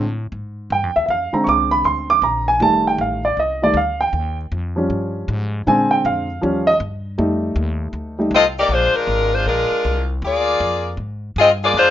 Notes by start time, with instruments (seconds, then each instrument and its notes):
Already playing: upright bass A2
0.32 upright bass G#2
0.70 upright bass G2, grand piano G5
0.83 upright bass F2
0.96 upright bass D2, grand piano E5
1.06 upright bass F2, grand piano E5
1.10 grand piano F5
1.33 grand piano D3 G#3 C4 A#5, muted upright bass stroke
1.44 upright bass C2, grand piano C#6
1.49 grand piano D6
1.71 grand piano B5
1.84 upright bass D2, grand piano C6
2.10 grand piano D6
2.22 upright bass A#1, grand piano A#5
2.48 grand piano G#5
2.60 upright bass F1, grand piano D#3 G3 A3 A5
2.87 grand piano G5
2.98 upright bass A1, grand piano F5
3.25 grand piano D5
3.37 upright bass C2, grand piano D#5
3.62 grand piano D#3 G3 A3 D5
3.74 upright bass D2, grand piano F5
4.01 grand piano G5
4.13 upright bass D#2
4.52 upright bass F2
4.76 grand piano F3 G3 C#4
4.90 upright bass G2
5.28 upright bass G#2
5.67 upright bass A#2, grand piano D3 G#3 C4 G#5
5.91 grand piano G5
6.05 upright bass F2, grand piano F5
6.42 upright bass D#2, grand piano F3 G3 C#4
6.67 grand piano D#5
6.80 upright bass G2
7.18 upright bass F2, grand piano G3 A3 D#4
7.56 upright bass D#2
7.93 upright bass D2
8.19 grand piano G3 A3 D#4
8.31 upright bass C2, saxophone section C4 F4 A4
8.35 saxophone section D#5
8.59 saxophone section A#3 D#4 G4 D5
8.69 upright bass A#1, saxophone section G#3 D4 F4 C5
8.94 saxophone section G#3 D4 F4 A#4, muted upright bass stroke
9.07 upright bass G#1
9.34 saxophone section G#3 D4 F4 C5
9.46 upright bass A#1, saxophone section G#3 D4 F4 A#4
9.70 muted upright bass stroke
9.85 upright bass C2
10.22 upright bass D2, saxophone section A#3 F4 G#4 D5
10.60 upright bass F2
10.97 upright bass G#2
11.36 upright bass G2, saxophone section C4 F4 G#4 D#5
11.63 saxophone section A#3 F4 G#4 D5
11.74 upright bass F2, saxophone section G#3 D4 F4 C5